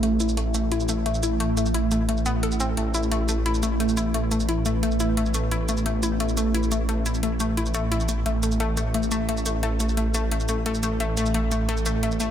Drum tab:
HH |x-x-x-x-x-x-x-x-|x-x-x-x-x-x-x-x-|x-x-x-x-x-x-x-x-|x-x-x-x-x-x-x-x-|
SH |--xx--x--xx--xx-|--xx--x--xx--xx-|--xx--x--xx--xx-|--xx--x--xx--xx-|

HH |x-x-x-x-x-x-x-x-|x-x-x-x-x-x-x-x-|x-x-x-x-x-x-x-x-|x-x-x-x-x-x-x-x-|
SH |--xx--x--xx--xx-|--xx--x--xx--xx-|--xx--x--xx--xx-|--xx--x--xx--xx-|

HH |x-x-x-x-x-x-x-x-|
SH |--xx--x--xx--xx-|